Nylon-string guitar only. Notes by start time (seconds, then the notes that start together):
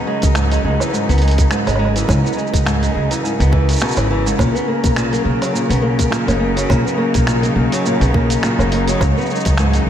0.07 G#3
0.36 G#2
0.52 G#3
0.64 G#3
0.81 E3
0.93 G#2
1.09 B3
1.22 G#3
1.51 G#2
1.67 G#3
1.79 G#3
1.96 E3
2.08 G#2
2.24 B3
2.37 G#3
2.65 G#2
2.82 G#3
2.94 G#3
3.10 E3
3.23 G#2
3.39 B3
3.52 E3
3.81 B2
3.98 E3
4.10 E3
4.26 G#2
4.38 A#2
4.55 B3
4.68 A#3
4.97 A#2
5.13 A#3
5.25 A#3
5.41 F#3
5.54 A#2
5.69 B3
5.82 A#3
6.11 A#2
6.27 A#3
6.39 A#3
6.56 F#3
6.69 A#2
6.85 B3
6.97 A#3
7.27 A#2
7.43 A#3
7.56 A#3
7.72 F#3
7.86 A#2
8.01 B3
8.14 A#3
8.43 A#2
8.59 A#3
8.72 A#3
8.89 F#3
9.01 G#2
9.18 B3
9.31 G#3
9.59 G#2
9.75 G#3